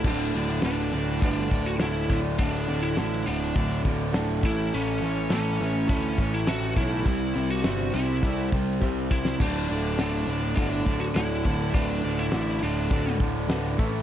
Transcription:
<<
  \new Staff \with { instrumentName = "Lead electric guitar" } { \time 4/4 \key d \mixolydian \tempo 4 = 103 d'4 d'4 d'8. fis'16 e'8 e'8 | d'8. e'8. d'4 r4 e'8 | cis'4 cis'4 cis'8. e'16 fis'8 e'8~ | e'8. fis'8. e'4 r4 e'8 |
d'4 d'4 d'8. fis'16 e'4 | d'8. e'8. d'4 r4. | }
  \new Staff \with { instrumentName = "Upright piano" } { \time 4/4 \key d \mixolydian <a d' fis' a'>4 <a d' fis' b'>4 <a d' fis' b'>4 <a d' fis' a'>4 | <a d' fis' a'>4 <a d' fis' a'>4 <a d' fis' a'>4 <a d' fis' a'>8 <a cis' e' a'>8~ | <a cis' e' a'>8 r8 <a cis' e' a'>4 <a cis' e' a'>4 <a cis' e' a'>4 | <g c' e' g'>4 <g c' e' g'>4 <g c' e' a'>4 <g c' e' g'>4 |
<a d' fis' a'>4 <a d' fis' a'>4 <a d' fis' a'>4 <a d' fis' a'>4 | <a d' fis' b'>4 <a d' fis' a'>4 <a d' fis' a'>4 <a d' fis' b'>8 <a cis' e' a'>8 | }
  \new Staff \with { instrumentName = "Overdriven electric guitar" } { \clef bass \time 4/4 \key d \mixolydian <d, a, d>8 <d, a, d>8 <d, a, d>8 <d, a, d>8 <d, a, d>8 <d, a, d>8 <d, a, d>8 <d, a, d>8 | <d, a, d>8 <d, a, d>8 <d, a, d>8 <d, a, d>8 <d, a, d>8 <d, a, d>8 <d, a, d>8 <a, e a>8 | <a, e a>8 <a, e a>8 <a, e a>8 <a, e a>8 <a, e a>8 <a, e a>8 <a, e a>8 <a, e a>8 | <c g c'>8 <c g c'>8 <c g c'>8 <c g c'>8 <c g c'>8 <c g c'>8 <c g c'>8 <c g c'>8 |
<d, a, d>8 <d, a, d>8 <d, a, d>8 <d, a, d>8 <d, a, d>8 <d, a, d>8 <d, a, d>8 <d, a, d>8 | <d, a, d>8 <d, a, d>8 <d, a, d>8 <d, a, d>8 <d, a, d>8 <d, a, d>8 <d, a, d>8 <a, e a>8 | }
  \new Staff \with { instrumentName = "Overdriven electric guitar" } { \clef bass \time 4/4 \key d \mixolydian <d, a, d>8 <d, a, d>8 <d, a, d>8 <d, a, d>8 <d, a, d>8 <d, a, d>8 <d, a, d>8 <d, a, d>8 | <d, a, d>8 <d, a, d>8 <d, a, d>8 <d, a, d>8 <d, a, d>8 <d, a, d>8 <d, a, d>8 <a, e a>8 | <a, e a>8 <a, e a>8 <a, e a>8 <a, e a>8 <a, e a>8 <a, e a>8 <a, e a>8 <a, e a>8 | <c g c'>8 <c g c'>8 <c g c'>8 <c g c'>8 <c g c'>8 <c g c'>8 <c g c'>8 <c g c'>8 |
<d, a, d>8 <d, a, d>8 <d, a, d>8 <d, a, d>8 <d, a, d>8 <d, a, d>8 <d, a, d>8 <d, a, d>8 | <d, a, d>8 <d, a, d>8 <d, a, d>8 <d, a, d>8 <d, a, d>8 <d, a, d>8 <d, a, d>8 <a, e a>8 | }
  \new Staff \with { instrumentName = "Picked electric bass" } { \clef bass \time 4/4 \key d \mixolydian d,,8 d,,8 d,,8 d,,8 g,,8 d,,8 d,,8 d,,8 | d,,8 d,,8 a,,8 d,,8 d,,8 d,,8 d,,8 a,,8 | a,,8 a,,8 a,,8 a,,8 d,8 a,,8 a,,8 b,,8 | c,8 c,8 g,,8 c,8 c,8 c,8 c,4 |
d,,8 d,,8 d,,8 d,,8 g,,8 d,,8 d,,8 d,,8 | d,,8 d,,8 a,,8 d,,8 d,,8 d,,8 d,,8 a,,8 | }
  \new DrumStaff \with { instrumentName = "Drums" } \drummode { \time 4/4 <cymc bd>8 hho16 sn16 <hho sn>8 hho8 <hho bd>8 <hho bd>8 <hho sn>8 <hho bd>8 | <hho bd>8 hho8 <hho sn>8 hho8 <hho bd>8 <hho bd>8 <hho sn>8 <hho bd>8 | hho8 hho8 <hho sn>8 hho8 <hho bd>8 <hho bd>8 <hho sn>8 <hho bd>8 | <hho bd>8 hho8 <hho sn>8 hho8 <hho bd>8 <hho bd>8 bd8 bd16 sn16 |
<cymc bd>8 hho8 <hho sn>8 hho8 <hho bd>8 <hho bd>8 <hho sn>8 <hho bd>8 | <hho bd>8 hho8 <hho sn>8 hho8 <hho bd>8 <hho bd>8 <hho sn>8 <hho bd>8 | }
>>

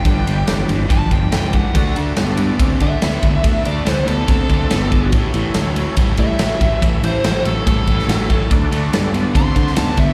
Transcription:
<<
  \new Staff \with { instrumentName = "Lead electric guitar" } { \time 4/4 \key d \major \tempo 4 = 142 g''4 r4 a''8 g''8 g''8 fis''8~ | fis''8 r2 e''4.~ | e''8 d''8 c''8 a'8 a'2 | r2 r8 e''4.~ |
e''8 c''8 c''8 a'8 a'2 | r2 c'''4 a''8 e''8 | }
  \new Staff \with { instrumentName = "Tonewheel organ" } { \time 4/4 \key d \major <d' g' b' d''>1 | <d' fis' a' d''>1~ | <d' fis' a' d''>1 | <cis' e' a' cis''>1~ |
<cis' e' a' cis''>1 | <d' fis' a' d''>1 | }
  \new Staff \with { instrumentName = "Overdriven electric guitar" } { \clef bass \time 4/4 \key d \major <g, d>8 <g, d>8 <g, e>8 <g, e>8 <g, f>8 <g, f>8 <g, e>8 <g, e>8 | <d a>8 <d a>8 <d b>8 <d b>8 <d c'>8 <d c'>8 <d b>8 <d b>8 | <d a>8 <d a>8 <d b>8 <d b>8 <d c'>8 <d c'>8 <d b>8 <d b>8 | <a, e>8 <a, e>8 <a, fis>8 <a, fis>8 <a, g>8 <a, g>8 <a, fis>8 <a, fis>8 |
<a, e>8 <a, e>8 <a, fis>8 <a, fis>8 <a, g>8 <a, g>8 <a, fis>8 <a, fis>8 | <d a>8 <d a>8 <d b>8 <d b>8 <d c'>8 <d c'>8 <d b>8 <d b>8 | }
  \new Staff \with { instrumentName = "Fingered electric bass" } { \clef bass \time 4/4 \key d \major g,,8 g,,8 g,,8 g,,8 g,,8 g,,8 cis,4 | d,8 d,8 g,4 d,8 d8 d,8 d,8 | d,8 d,8 d,8 d,8 d,8 d,8 g,,4 | a,,8 a,,8 d,4 a,,8 a,8 a,,8 a,,8 |
a,,8 a,,8 a,,8 a,,8 a,,8 a,,8 a,,4 | d,8 d,8 g,4 d,8 d8 d,8 d,8 | }
  \new DrumStaff \with { instrumentName = "Drums" } \drummode { \time 4/4 <bd cymr>8 cymr8 <cymr sn>8 cymr8 <bd cymr>8 <bd cymr>8 <cymr sn>8 <bd cymr>8 | <bd cymr>8 cymr8 <cymr sn>8 cymr8 <bd cymr>8 <bd cymr>8 <cymr sn>8 <bd cymr>8 | <bd cymr>8 cymr8 <cymr sn>8 cymr8 <bd cymr>8 <bd cymr>8 <cymr sn>8 <bd cymr>8 | <bd cymr>8 cymr8 <cymr sn>8 cymr8 <bd cymr>8 <bd cymr>8 <cymr sn>8 <bd cymr>8 |
<bd cymr>8 cymr8 <cymr sn>8 cymr8 <bd cymr>8 <bd cymr>16 sn16 <cymr sn>8 <bd cymr>8 | <bd cymr>8 cymr8 <cymr sn>8 cymr8 <bd cymr>8 <bd cymr>16 sn16 <cymr sn>8 <bd cymr>8 | }
>>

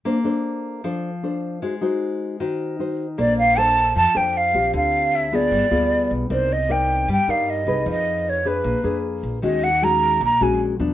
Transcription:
<<
  \new Staff \with { instrumentName = "Flute" } { \time 4/4 \key bes \major \tempo 4 = 154 r1 | r1 | d''8 f''8 a''4 a''8 g''8 f''4 | f''4 e''8 d''2 r8 |
c''8 ees''8 g''4 g''8 f''8 ees''4 | ees''4 des''8 ces''4. r4 | ees''8 ges''8 bes''4 bes''8 aes''8 r4 | }
  \new Staff \with { instrumentName = "Nylon-string guitar" } { \time 4/4 \key bes \major << { <d' a' c''>8 <d' a' c''>4. <d' a' c''>8 r8 <d' a' c''>4 | <ees' ges' c''>8 <ees' ges' c''>4. <ees' ges' c''>4 <ees' ges' c''>8 r8 | <d' a' c''>4 <d' a' c''>4 r8 <d' a' c''>4 <c' f' g'>8~ | <c' f' g'>4. <ces' f' aes'>4 <b f' aes'>4. |
<ees' bes' d''>8 r8 <ees' bes' d''>4 r8 <ees' bes' d''>4 <ees' aes' ces''>8~ | <ees' aes' ces''>4. <d' aes' ces''>4 <d' aes' ces''>4. | <aes des' ges'>8 r8 <aes des' ges'>4 r8 <aes des' ges'>4 <f ces' d'>8 | } \\ { bes2 f2 | aes2 ees2 | bes2 f2 | d2 g2 |
c'2 g2 | f2 bes2 | ees2 bes,2 | } >> }
  \new Staff \with { instrumentName = "Upright bass" } { \clef bass \time 4/4 \key bes \major r1 | r1 | bes,,2 f,16 r16 f,4 bes,,8 | d,2 g,,16 r16 d,4 b,,8 |
c,2 g,16 r16 g,4 c,8 | f,2 bes,,16 r16 f,4 bes,,8 | ees,2 bes,,16 r16 bes,,4 ees,8 | }
>>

